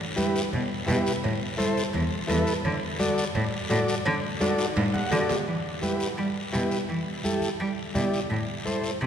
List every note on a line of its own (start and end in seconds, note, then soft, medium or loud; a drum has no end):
0.16 0.42 E4 medium
0.16 0.42 G4 medium
0.16 0.42 B4 medium
0.16 cowbell medium
0.16 high conga medium
0.16 short guiro medium
0.36 short guiro medium
0.53 0.61 B2 medium
0.53 cowbell medium
0.53 high conga soft
0.53 low conga medium
0.53 long guiro medium
0.86 0.96 B2 loud
0.86 1.12 E4 medium
0.86 1.12 G4 medium
0.86 1.13 B4 medium
0.86 cowbell medium
0.86 high conga medium
0.86 low conga medium
0.86 low timbale medium
0.86 short guiro medium
1.06 short guiro medium
1.24 1.32 A2 medium
1.24 cowbell loud
1.24 high conga soft
1.24 low conga medium
1.24 long guiro medium
1.57 1.83 E4 medium
1.57 1.83 A4 medium
1.57 1.83 C5 medium
1.57 cowbell medium
1.57 high conga medium
1.57 short guiro medium
1.77 short guiro medium
1.94 2.02 E2 medium
1.94 cowbell medium
1.94 high conga soft
1.94 low conga medium
1.94 long guiro medium
2.27 2.38 E2 loud
2.27 2.53 E4 medium
2.27 2.54 A4 medium
2.27 2.54 B4 loud
2.27 cowbell medium
2.27 high conga medium
2.27 low timbale medium
2.27 short guiro medium
2.47 short guiro medium
2.65 2.73 D3 medium
2.65 cowbell medium
2.65 high conga soft
2.65 low conga medium
2.65 long guiro medium
2.99 3.25 F#4 medium
2.99 3.25 A4 medium
2.99 3.25 D5 medium
2.99 cowbell medium
2.99 high conga medium
2.99 short guiro medium
3.18 short guiro medium
3.35 3.43 A2 medium
3.35 cowbell medium
3.35 high conga soft
3.35 low conga medium
3.35 long guiro medium
3.70 3.79 A2 loud
3.70 3.95 F#4 medium
3.70 3.95 A4 medium
3.70 3.95 D5 medium
3.70 cowbell medium
3.70 high conga medium
3.70 short guiro medium
3.88 short guiro medium
4.05 4.14 D3 loud
4.05 cowbell loud
4.05 high conga soft
4.05 long guiro medium
4.41 4.66 F#4 medium
4.41 4.66 A4 medium
4.41 4.66 D5 loud
4.41 cowbell medium
4.41 high conga medium
4.41 high timbale medium
4.41 short guiro medium
4.58 high timbale medium
4.58 short guiro medium
4.76 4.84 A2 medium
4.76 cowbell medium
4.76 high conga medium
4.76 high timbale loud
4.76 long guiro medium
4.94 5.11 F#5 medium
4.94 low conga medium
4.94 low timbale medium
5.11 5.20 D3 medium
5.11 5.37 F#4 medium
5.11 5.37 A4 medium
5.11 5.37 D5 medium
5.11 cowbell medium
5.11 low conga medium
5.11 low timbale medium
5.11 short guiro medium
5.29 low conga medium
5.29 low timbale medium
5.29 short guiro medium
5.47 5.55 E3 medium
5.47 high conga soft
5.47 long guiro medium
5.82 6.07 E4 medium
5.82 6.08 G4 medium
5.82 6.08 B4 medium
5.82 high conga medium
5.82 short guiro medium
6.00 short guiro medium
6.18 6.26 G3 medium
6.18 high conga soft
6.18 long guiro medium
6.53 6.61 B2 medium
6.53 6.78 E4 medium
6.53 6.78 G4 medium
6.53 6.78 B4 medium
6.53 high conga medium
6.53 short guiro medium
6.71 short guiro medium
6.89 6.97 E3 medium
6.89 high conga soft
6.89 long guiro medium
7.24 7.49 E4 medium
7.24 7.50 G4 medium
7.24 7.50 A4 medium
7.24 high conga medium
7.24 short guiro medium
7.41 low conga medium
7.41 short guiro medium
7.59 7.68 G3 loud
7.59 high conga soft
7.59 long guiro medium
7.94 8.03 B2 medium
7.94 8.20 E4 medium
7.94 8.20 G4 medium
7.94 8.20 D5 medium
7.94 high conga medium
7.94 low conga medium
7.94 short guiro medium
8.13 short guiro medium
8.30 8.38 A2 medium
8.30 high conga soft
8.30 long guiro medium
8.65 8.91 E4 medium
8.65 8.91 A4 medium
8.65 8.91 C5 medium
8.65 high conga medium
8.65 short guiro medium
8.84 short guiro medium
9.01 9.07 C3 loud
9.01 high conga soft
9.01 long guiro medium